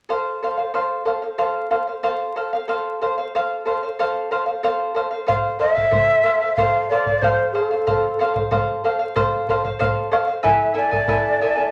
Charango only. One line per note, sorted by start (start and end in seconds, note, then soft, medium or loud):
0.09 0.41 A4 medium
0.09 0.42 C5 medium
0.09 0.42 F5 medium
0.42 0.58 A4 soft
0.42 0.57 C5 medium
0.42 0.56 F5 medium
0.57 0.73 C5 soft
0.57 0.73 F5 soft
0.74 1.04 A4 medium
0.74 1.05 C5 medium
0.74 1.06 F5 medium
1.05 1.22 A4 medium
1.05 1.22 C5 medium
1.05 1.21 F5 medium
1.22 1.37 C5 soft
1.22 1.37 F5 soft
1.38 1.69 A4 medium
1.38 1.70 C5 medium
1.38 1.70 F5 medium
1.71 1.87 A4 medium
1.71 1.87 C5 soft
1.71 1.86 F5 medium
1.87 2.02 C5 soft
1.87 2.03 F5 soft
2.03 2.35 A4 medium
2.03 2.35 C5 medium
2.03 2.36 F5 medium
2.36 2.53 A4 soft
2.36 2.52 C5 soft
2.36 2.52 F5 medium
2.53 2.68 C5 soft
2.53 2.68 F5 medium
2.68 3.00 A4 medium
2.68 3.01 C5 medium
2.68 3.01 F5 medium
3.01 3.18 A4 medium
3.01 3.17 C5 medium
3.01 3.17 F5 medium
3.18 3.34 C5 soft
3.18 3.34 F5 soft
3.35 3.64 A4 medium
3.35 3.65 C5 medium
3.35 3.66 F5 medium
3.65 3.82 A4 medium
3.65 3.82 C5 medium
3.65 3.82 F5 medium
3.83 3.99 C5 soft
3.83 3.99 F5 soft
3.99 4.30 A4 medium
3.99 4.30 C5 medium
3.99 4.31 F5 medium
4.31 4.47 A4 soft
4.31 4.45 C5 medium
4.31 4.45 F5 medium
4.46 4.63 C5 soft
4.46 4.63 F5 soft
4.63 4.93 A4 medium
4.63 4.95 C5 medium
4.63 4.95 F5 medium
4.95 5.12 A4 soft
4.95 5.10 C5 medium
4.95 5.09 F5 medium
5.11 5.26 C5 soft
5.11 5.27 F5 medium
5.27 5.58 A4 medium
5.27 5.58 C5 medium
5.27 5.59 F5 medium
5.59 5.76 A4 soft
5.59 5.74 C5 soft
5.59 5.74 F5 medium
5.75 5.91 C5 soft
5.75 5.91 F5 medium
5.91 6.22 A4 medium
5.91 6.24 C5 medium
6.23 6.41 A4 medium
6.23 6.41 C5 medium
6.23 6.40 F5 medium
6.41 6.57 C5 soft
6.41 6.57 F5 soft
6.58 6.90 A4 medium
6.58 6.90 C5 medium
6.58 6.91 F5 medium
6.91 7.07 A4 medium
6.91 7.06 C5 medium
6.91 7.06 F5 medium
7.07 7.22 C5 soft
7.07 7.23 F5 soft
7.22 7.53 A4 medium
7.22 7.54 C5 medium
7.22 7.54 F5 medium
7.54 7.71 A4 soft
7.54 7.70 C5 medium
7.54 7.70 F5 medium
7.71 7.86 C5 soft
7.71 7.86 F5 soft
7.87 8.18 A4 medium
7.87 8.19 C5 medium
7.87 8.19 F5 medium
8.19 8.35 A4 medium
8.19 8.34 C5 medium
8.19 8.33 F5 medium
8.34 8.50 C5 soft
8.34 8.51 F5 medium
8.51 8.83 A4 medium
8.51 8.84 C5 medium
8.51 8.84 F5 medium
8.84 9.00 A4 medium
8.84 8.99 C5 medium
8.84 8.98 F5 medium
8.99 9.15 C5 soft
8.99 9.15 F5 medium
9.16 9.48 A4 medium
9.16 9.48 C5 medium
9.16 9.48 F5 medium
9.49 9.65 A4 medium
9.49 9.64 C5 medium
9.49 9.63 F5 medium
9.65 9.79 C5 soft
9.65 9.79 F5 medium
9.79 10.10 A4 medium
9.79 10.11 C5 medium
9.79 10.12 F5 medium
10.11 10.28 A4 medium
10.11 10.27 C5 medium
10.11 10.26 F5 medium
10.27 10.43 C5 soft
10.27 10.43 F5 soft
10.43 10.73 E4 medium
10.43 10.74 A4 medium
10.43 10.76 B4 medium
10.43 10.73 E5 medium
10.43 10.73 G#5 medium
10.74 10.92 E4 medium
10.74 10.91 A4 medium
10.74 10.91 E5 medium
10.74 10.90 G#5 medium
10.91 11.08 E4 soft
10.91 11.07 A4 soft
10.91 11.08 G#5 soft
11.08 11.40 E4 medium
11.08 11.41 A4 medium
11.08 11.40 B4 medium
11.08 11.40 E5 medium
11.08 11.41 G#5 medium
11.41 11.57 E4 medium
11.41 11.55 A4 medium
11.41 11.57 E5 medium
11.41 11.54 G#5 medium
11.55 11.71 E4 soft
11.55 11.71 A4 soft
11.55 11.71 G#5 soft